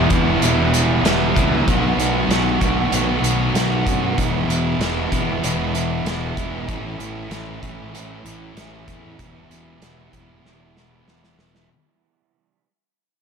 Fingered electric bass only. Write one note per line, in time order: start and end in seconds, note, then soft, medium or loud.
0.10 0.40 E1 medium
0.41 1.00 E1 medium
1.03 1.33 E1 medium
1.36 1.65 C#2 medium
1.67 1.96 B1 medium
1.97 2.27 B1 medium
2.28 2.58 B1 medium
2.61 2.90 B1 medium
2.91 3.21 B1 medium
3.22 3.52 B1 medium
3.54 3.83 B1 medium
3.86 4.15 F#2 medium
4.17 4.46 E1 medium
4.47 4.77 E1 medium
4.79 5.09 E1 medium
5.11 5.41 E1 medium
5.42 6.01 E1 medium
6.05 6.34 E1 medium
6.37 6.66 E1 medium
6.68 6.97 A1 medium
7.00 7.29 A1 medium
7.31 7.60 A1 medium
7.62 7.91 A1 medium
7.94 8.23 A1 medium
8.25 8.54 A1 medium
8.55 8.85 A1 medium
8.88 9.17 E2 medium
9.19 9.48 E1 medium
9.49 9.79 E1 medium
9.82 10.11 E1 medium
10.13 10.42 E1 medium
10.44 11.03 E1 medium
11.06 11.36 E1 medium
11.38 11.68 E1 medium